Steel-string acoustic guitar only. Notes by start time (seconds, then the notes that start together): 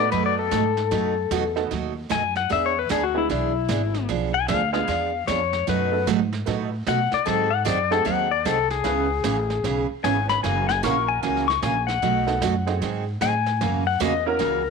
0.11 B2 F#3 A3 D#4 F#4
0.51 B2 F#3 A3 D#4 F#4
0.91 B2 F#3 A3 D#4 F#4
1.31 B2 F#3 A3 D#4 F#4
1.71 B2 F#3 A3 D#4 F#4
2.09 B2 F#3 A3 D#4 F#4
2.49 E3 B3 D4 G#4
2.89 E3 B3 D4 G#4
3.29 E3 B3 D4 G#4
3.69 E3 B3 D4 G#4
4.09 F3 B3 D4 G#4
4.48 F3 B3 D4 G#4
4.87 F3 B3 D4 G#4
5.28 F3 B3 D4 G#4
5.67 B2 F#3 A3 D#4 F#4
6.07 B2 F#3 A3 D#4 F#4
6.46 B2 F#3 A3 D#4 F#4
6.87 B2 F#3 A3 D#4 F#4
7.26 D#3 F#3 C4 D#4 G#4
7.65 D#3 F#3 C4 D#4 G#4
8.05 D#3 F#3 C4 D#4 G#4
8.45 D#3 F#3 C4 D#4 G#4
8.84 C#3 E3 B3 C#4 G#4
9.24 C#3 E3 B3 C#4 G#4
9.64 C#3 E3 B3 C#4 G#4
10.04 C#3 E3 B3 C#4 G#4
10.44 C#3 E3 A#3 C#4 F#4
10.83 C#3 E3 A#3 C#4 F#4
11.23 C#3 E3 A#3 C#4 F#4
11.62 C#3 E3 A#3 C#4 F#4
12.02 B2 F#3 A3 D#4 F#4
12.42 B2 F#3 A3 D#4 F#4
12.82 D#3 F#3 C4 D#4 G#4
13.21 D#3 F#3 C4 D#4 G#4
13.61 C#3 E3 A#3 C#4 F#4
14.00 C#3 E3 A#3 C#4 F#4
14.39 C#3 E3 A#3 C#4 F#4